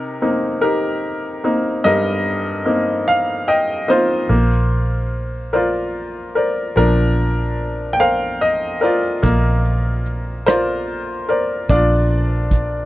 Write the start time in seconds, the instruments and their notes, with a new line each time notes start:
Already playing: upright piano C3 D#4 G4 A#4
0.22 upright piano A#3 C4 D#4
0.61 upright piano D#4 G4 A#4
1.44 upright piano A#3 C4 D#4
1.84 upright piano G2 G4 A#4 D#5
2.65 upright piano A#3 C4 D#4
3.08 upright piano F5
3.48 upright piano D#5 G5
3.88 upright piano A#3 C4 D#4 F4 C5 D#5
4.29 fingered electric bass A#1, upright piano A#3
5.53 upright piano F4 A#4 C5 D5
6.35 upright piano A#4 C5 D5
6.76 fingered electric bass A#1, upright piano F3 D4 A#4
7.93 upright piano G5
8.00 upright piano A#4 C5 F5
8.41 upright piano D#5
8.81 upright piano F4 A#4 C5 D5
9.23 fingered electric bass A#1, upright piano A#3, kick, closed hi-hat
9.64 closed hi-hat
10.06 closed hi-hat
10.46 upright piano F4 A#4 C5 D5, cross-stick, closed hi-hat
10.87 closed hi-hat
11.28 upright piano A#4 C5 D5, closed hi-hat
11.69 fingered electric bass A#1, upright piano D4 F4 D5, kick, closed hi-hat
12.10 closed hi-hat
12.51 kick, closed hi-hat